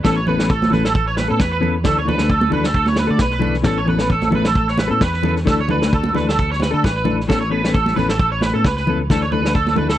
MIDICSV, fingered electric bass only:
0, 0, Header, 1, 2, 480
1, 0, Start_track
1, 0, Key_signature, 3, "major"
1, 0, Tempo, 452489
1, 47, Time_signature, 4, 2, 24, 8
1, 10587, End_track
2, 0, Start_track
2, 0, Title_t, "Fingered electric bass"
2, 0, Program_c, 0, 33
2, 52, Note_on_c, 0, 33, 107
2, 730, Note_off_c, 0, 33, 0
2, 765, Note_on_c, 0, 33, 102
2, 1340, Note_off_c, 0, 33, 0
2, 1390, Note_on_c, 0, 45, 82
2, 1477, Note_off_c, 0, 45, 0
2, 1483, Note_on_c, 0, 40, 104
2, 1937, Note_off_c, 0, 40, 0
2, 1962, Note_on_c, 0, 38, 99
2, 2643, Note_off_c, 0, 38, 0
2, 2681, Note_on_c, 0, 38, 102
2, 3257, Note_off_c, 0, 38, 0
2, 3291, Note_on_c, 0, 50, 92
2, 3377, Note_off_c, 0, 50, 0
2, 3384, Note_on_c, 0, 35, 102
2, 3846, Note_off_c, 0, 35, 0
2, 3867, Note_on_c, 0, 33, 108
2, 4555, Note_off_c, 0, 33, 0
2, 4589, Note_on_c, 0, 33, 100
2, 5170, Note_off_c, 0, 33, 0
2, 5207, Note_on_c, 0, 45, 86
2, 5311, Note_off_c, 0, 45, 0
2, 5317, Note_on_c, 0, 40, 98
2, 5773, Note_off_c, 0, 40, 0
2, 5798, Note_on_c, 0, 38, 110
2, 6481, Note_off_c, 0, 38, 0
2, 6520, Note_on_c, 0, 38, 94
2, 7097, Note_off_c, 0, 38, 0
2, 7144, Note_on_c, 0, 50, 92
2, 7244, Note_off_c, 0, 50, 0
2, 7257, Note_on_c, 0, 33, 98
2, 7704, Note_off_c, 0, 33, 0
2, 7746, Note_on_c, 0, 33, 109
2, 8417, Note_off_c, 0, 33, 0
2, 8459, Note_on_c, 0, 33, 100
2, 9028, Note_off_c, 0, 33, 0
2, 9069, Note_on_c, 0, 45, 87
2, 9162, Note_off_c, 0, 45, 0
2, 9169, Note_on_c, 0, 37, 100
2, 9622, Note_off_c, 0, 37, 0
2, 9650, Note_on_c, 0, 38, 103
2, 10331, Note_off_c, 0, 38, 0
2, 10381, Note_on_c, 0, 38, 94
2, 10587, Note_off_c, 0, 38, 0
2, 10587, End_track
0, 0, End_of_file